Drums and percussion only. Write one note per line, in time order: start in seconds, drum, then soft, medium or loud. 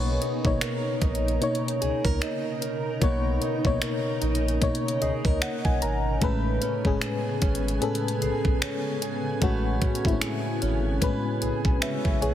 0.22 closed hi-hat medium
0.45 kick medium
0.61 finger snap loud
0.61 closed hi-hat medium
1.02 kick medium
1.02 closed hi-hat medium
1.15 closed hi-hat medium
1.28 closed hi-hat medium
1.42 closed hi-hat medium
1.55 closed hi-hat medium
1.68 closed hi-hat medium
1.82 closed hi-hat medium
2.05 kick medium
2.22 finger snap loud
2.22 closed hi-hat medium
2.62 closed hi-hat medium
3.02 kick loud
3.02 closed hi-hat medium
3.42 closed hi-hat medium
3.65 kick medium
3.82 finger snap loud
3.82 closed hi-hat medium
4.22 closed hi-hat medium
4.35 closed hi-hat medium
4.48 closed hi-hat medium
4.62 kick medium
4.62 closed hi-hat medium
4.75 closed hi-hat medium
4.88 closed hi-hat medium
5.02 closed hi-hat medium
5.25 kick medium
5.42 finger snap loud
5.42 closed hi-hat medium
5.65 kick loud
5.82 closed hi-hat medium
6.21 kick loud
6.21 closed hi-hat medium
6.62 closed hi-hat medium
6.85 kick medium
7.01 finger snap loud
7.01 closed hi-hat medium
7.42 kick loud
7.42 closed hi-hat medium
7.55 closed hi-hat medium
7.68 closed hi-hat medium
7.82 closed hi-hat medium
7.95 closed hi-hat medium
8.08 closed hi-hat medium
8.22 closed hi-hat medium
8.45 kick medium
8.62 finger snap loud
8.62 closed hi-hat medium
9.02 closed hi-hat medium
9.42 kick loud
9.42 closed hi-hat medium
9.82 kick medium
9.82 closed hi-hat medium
9.95 closed hi-hat soft
10.05 kick medium
10.05 closed hi-hat soft
10.21 finger snap loud
10.21 closed hi-hat medium
10.62 closed hi-hat medium
11.02 kick medium
11.02 closed hi-hat medium
11.42 closed hi-hat medium
11.65 kick medium
11.82 finger snap loud
11.82 closed hi-hat medium
12.05 kick loud
12.22 closed hi-hat medium